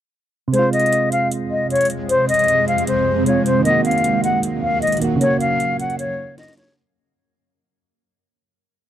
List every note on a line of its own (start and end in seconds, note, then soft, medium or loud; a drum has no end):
0.48 3.19 C3 medium
0.53 3.62 F2 medium
0.53 3.62 C3 medium
0.53 3.22 G#3 medium
0.53 3.62 G#3 loud
0.53 0.70 C5 medium
0.53 closed hi-hat medium
0.59 3.25 F4 medium
0.73 1.10 D#5 medium
0.73 closed hi-hat medium
0.80 closed hi-hat medium
0.86 closed hi-hat medium
0.92 closed hi-hat medium
1.12 1.28 F5 medium
1.12 closed hi-hat medium
1.31 closed hi-hat medium
1.51 1.67 D#5 medium
1.70 1.87 C#5 medium
1.70 closed hi-hat soft
1.76 closed hi-hat medium
1.81 closed hi-hat medium
1.85 closed hi-hat medium
1.90 closed hi-hat medium
2.09 2.26 C5 loud
2.09 closed hi-hat medium
2.29 2.66 D#5 medium
2.29 closed hi-hat medium
2.34 closed hi-hat medium
2.39 closed hi-hat soft
2.44 closed hi-hat soft
2.48 closed hi-hat medium
2.68 2.84 F5 medium
2.68 closed hi-hat soft
2.78 closed hi-hat medium
2.87 3.24 C5 medium
2.87 closed hi-hat medium
3.24 3.64 C3 medium
3.24 3.65 G#3 soft
3.24 3.42 C#5 medium
3.24 closed hi-hat medium
3.29 3.67 F4 medium
3.46 3.62 C5 medium
3.46 closed hi-hat medium
3.59 4.96 D#3 medium
3.65 5.20 D#2 medium
3.65 5.20 A#2 medium
3.65 5.20 F#3 medium
3.65 4.99 A#3 medium
3.65 3.81 D#5 medium
3.65 closed hi-hat medium
3.70 5.02 F#4 medium
3.85 4.21 F5 medium
3.85 closed hi-hat medium
3.91 closed hi-hat medium
3.98 closed hi-hat medium
4.04 closed hi-hat medium
4.24 4.40 F#5 medium
4.24 closed hi-hat medium
4.43 closed hi-hat medium
4.63 4.79 F5 medium
4.82 4.98 D#5 medium
4.82 closed hi-hat soft
4.87 closed hi-hat medium
4.92 closed hi-hat medium
4.97 5.20 D#3 soft
4.97 closed hi-hat medium
5.01 5.20 A#3 soft
5.01 5.22 F#4 medium
5.01 closed hi-hat medium
5.16 6.71 C#3 medium
5.21 6.75 F#2 medium
5.21 6.75 C#3 medium
5.21 6.75 A#3 medium
5.21 6.74 A#3 medium
5.21 5.38 C#5 loud
5.21 closed hi-hat medium
5.27 6.77 F#4 medium
5.40 5.77 F5 medium
5.40 closed hi-hat medium
5.60 closed hi-hat medium
5.79 5.96 F#5 medium
5.79 closed hi-hat medium
5.90 closed hi-hat soft
5.99 6.36 C#5 medium
5.99 closed hi-hat medium
6.38 6.54 D#5 medium
6.38 snare medium
6.38 closed hi-hat soft
6.43 snare soft
6.43 closed hi-hat medium
6.48 snare medium
6.48 closed hi-hat medium
6.53 snare medium
6.53 closed hi-hat medium
6.57 6.74 C#5 medium
6.57 snare medium
6.57 closed hi-hat medium
6.63 snare medium
6.68 snare medium
6.72 snare medium